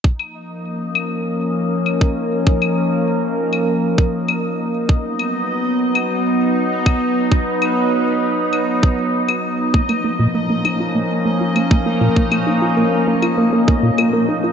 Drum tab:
CL |-x----x-----x---|-x-----x----x---|--x----x-----x--|--x-----x----x--|
BD |o------------o--|o---------o-----|o------------o--|o---------o-----|

CL |-x----x-----x---|-x-----x----x---|
BD |o------------o--|o---------o-----|